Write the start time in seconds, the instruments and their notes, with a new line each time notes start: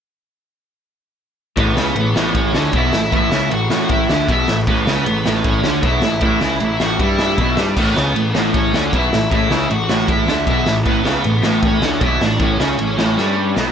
1.57 picked electric bass A1, overdriven electric guitar A2, lead electric guitar B3 B4, kick, ride
1.76 picked electric bass C#2, overdriven electric guitar C#3, snare
1.95 picked electric bass A1, overdriven electric guitar A2, ride
2.15 picked electric bass A1, overdriven electric guitar A2, snare
2.35 lead electric guitar C#4 C#5, kick, ride
2.52 picked electric bass D2, overdriven electric guitar D3, snare
2.72 picked electric bass B1, overdriven electric guitar B2, kick, ride
2.76 lead electric guitar E4 E5
2.93 picked electric bass A1, overdriven electric guitar A2, snare
3.12 picked electric bass A1, overdriven electric guitar A2, lead electric guitar E4 E5, kick, ride
3.32 picked electric bass C#2, overdriven electric guitar C#3, snare
3.51 picked electric bass A1, overdriven electric guitar A2, lead electric guitar F#4 F#5, ride
3.70 picked electric bass A1, overdriven electric guitar A2, snare
3.89 lead electric guitar E4 E5, kick, ride
4.09 picked electric bass D2, overdriven electric guitar D3, snare
4.28 picked electric bass B1, overdriven electric guitar B2, lead electric guitar E4 E5, kick, ride
4.48 picked electric bass A1, overdriven electric guitar A2, snare
4.67 picked electric bass A1, overdriven electric guitar A2, lead electric guitar B3 B4, kick, ride
4.86 picked electric bass C#2, overdriven electric guitar C#3, snare
5.06 picked electric bass A1, overdriven electric guitar A2, ride
5.26 picked electric bass A1, overdriven electric guitar A2, snare
5.44 lead electric guitar C#4, kick, ride
5.49 lead electric guitar C#5
5.64 picked electric bass D2, overdriven electric guitar D3, snare
5.82 picked electric bass B1, overdriven electric guitar B2, lead electric guitar E4, kick, ride
5.88 lead electric guitar E5
6.02 picked electric bass A1, overdriven electric guitar A2, snare
6.21 picked electric bass A1, overdriven electric guitar A2, lead electric guitar E4, kick, ride
6.25 lead electric guitar E5
6.41 picked electric bass C#2, overdriven electric guitar C#3, snare
6.60 picked electric bass A1, overdriven electric guitar A2, ride
6.80 picked electric bass A1, overdriven electric guitar A2, lead electric guitar F#4, snare
6.85 lead electric guitar F#5
6.99 picked electric bass G2, overdriven electric guitar G3, lead electric guitar E4 E5, kick, ride
7.19 snare
7.37 picked electric bass B1, overdriven electric guitar B2, kick, ride
7.57 picked electric bass G2, overdriven electric guitar G3, snare
7.76 picked electric bass A1, overdriven electric guitar A2, lead electric guitar B3, kick, crash
7.81 lead electric guitar B4
7.95 picked electric bass C#2, overdriven electric guitar C#3, snare
8.15 picked electric bass A1, overdriven electric guitar A2, ride
8.35 picked electric bass A1, overdriven electric guitar A2, lead electric guitar A4, snare
8.54 lead electric guitar C#4, kick, ride
8.58 lead electric guitar C#5
8.73 picked electric bass D2, overdriven electric guitar D3, snare
8.93 picked electric bass B1, overdriven electric guitar B2, lead electric guitar E4, kick, ride
8.98 lead electric guitar E5
9.13 picked electric bass A1, overdriven electric guitar A2, snare
9.31 picked electric bass A1, overdriven electric guitar A2, lead electric guitar E4, kick, ride
9.36 lead electric guitar E5
9.50 picked electric bass C#2, overdriven electric guitar C#3, snare
9.70 picked electric bass A1, overdriven electric guitar A2, lead electric guitar F#4 F#5, ride
9.89 picked electric bass A1, overdriven electric guitar A2, snare
10.08 lead electric guitar E4 E5, kick, ride
10.27 picked electric bass D2, overdriven electric guitar D3, snare
10.47 picked electric bass B1, overdriven electric guitar B2, lead electric guitar E4, kick, ride
10.51 lead electric guitar E5
10.66 picked electric bass A1, overdriven electric guitar A2, snare
10.86 picked electric bass A1, overdriven electric guitar A2, lead electric guitar B3 B4, kick, ride
11.05 picked electric bass C#2, overdriven electric guitar C#3, snare
11.24 picked electric bass A1, overdriven electric guitar A2, ride
11.43 picked electric bass A1, overdriven electric guitar A2, snare
11.63 lead electric guitar C#4, kick, ride
11.67 lead electric guitar C#5
11.82 picked electric bass D2, overdriven electric guitar D3, snare
12.00 picked electric bass B1, overdriven electric guitar B2, lead electric guitar E4, kick, ride
12.06 lead electric guitar E5
12.20 picked electric bass A1, overdriven electric guitar A2, lead electric guitar D4, snare
12.25 lead electric guitar D5
12.39 picked electric bass A1, overdriven electric guitar A2, lead electric guitar C#4, kick, ride
12.45 lead electric guitar C#5
12.59 picked electric bass C#2, overdriven electric guitar C#3, snare
12.78 picked electric bass A1, overdriven electric guitar A2, ride
12.98 picked electric bass A1, overdriven electric guitar A2, snare
13.18 picked electric bass G2, overdriven electric guitar G3, snare
13.56 picked electric bass B1, overdriven electric guitar B2, snare